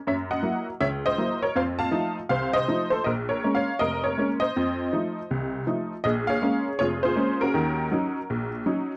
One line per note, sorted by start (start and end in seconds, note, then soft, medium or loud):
0.07 0.39 F#2 medium
0.07 0.13 C#5 medium
0.07 0.13 E5 medium
0.31 0.65 D#5 medium
0.31 0.65 F#5 medium
0.43 0.68 F#3 soft
0.43 0.68 A#3 soft
0.43 0.69 E4 soft
0.81 1.13 C#2 medium
0.81 0.86 C#5 medium
0.81 0.86 E5 medium
1.06 1.40 C5 medium
1.06 1.44 D#5 medium
1.18 1.43 F#3 soft
1.18 1.44 A#3 soft
1.18 1.44 E4 medium
1.42 1.55 A#4 medium
1.42 1.56 C#5 medium
1.56 1.88 F2 medium
1.56 1.62 C5 medium
1.56 1.61 F5 medium
1.79 2.14 F5 medium
1.79 2.14 A5 loud
1.91 2.17 F3 medium
1.91 2.18 A3 soft
1.91 2.18 D#4 medium
2.29 2.62 C2 medium
2.29 2.53 C5 medium
2.29 2.54 F5 medium
2.53 2.89 C5 medium
2.53 2.92 D#5 loud
2.68 2.93 F3 soft
2.68 2.93 A3 soft
2.68 2.93 D#4 medium
2.90 3.04 A4 medium
2.90 3.05 C5 medium
3.04 3.38 A#1 medium
3.04 3.11 A#4 medium
3.04 3.10 D#5 medium
3.29 3.53 A#4 medium
3.29 3.53 C#5 medium
3.44 3.68 G#3 soft
3.44 3.69 A#3 soft
3.44 3.69 C#4 medium
3.55 3.79 C#5 medium
3.55 3.81 F5 medium
3.79 4.12 F1 medium
3.79 4.03 A#4 medium
3.79 4.03 D#5 medium
4.04 4.29 A#4 medium
4.04 4.27 C#5 medium
4.17 4.43 G#3 soft
4.17 4.43 A#3 soft
4.17 4.43 C#4 medium
4.40 5.63 C5 medium
4.40 5.62 D#5 medium
4.56 4.88 F2 medium
4.93 5.18 F3 soft
4.93 5.18 A3 soft
4.93 5.18 D#4 medium
5.31 5.62 C2 medium
5.67 5.92 F3 soft
5.67 5.92 A3 soft
5.67 5.92 D#4 soft
6.04 6.37 A#1 medium
6.04 6.27 G#4 medium
6.04 6.09 D#5 medium
6.27 6.79 G#4 medium
6.27 6.77 C#5 medium
6.27 6.62 F5 medium
6.42 6.67 G#3 soft
6.42 6.67 A#3 soft
6.42 6.67 C#4 medium
6.79 7.12 F1 medium
6.79 7.04 F4 medium
6.79 7.04 G#4 medium
6.79 6.84 C#5 medium
7.03 7.51 F4 medium
7.03 7.51 G#4 medium
7.03 7.41 C5 medium
7.15 7.41 G#3 soft
7.15 7.41 A#3 soft
7.15 7.41 C#4 medium
7.41 7.90 C#4 medium
7.41 8.49 F#4 medium
7.41 8.48 A#4 medium
7.54 7.86 D#2 medium
7.54 7.86 D#3 medium
7.92 8.16 F#3 medium
7.92 8.16 C#4 soft
7.92 8.17 D#4 medium
8.30 8.61 A#1 medium
8.66 8.91 F#3 medium
8.66 8.91 C#4 soft
8.66 8.91 D#4 medium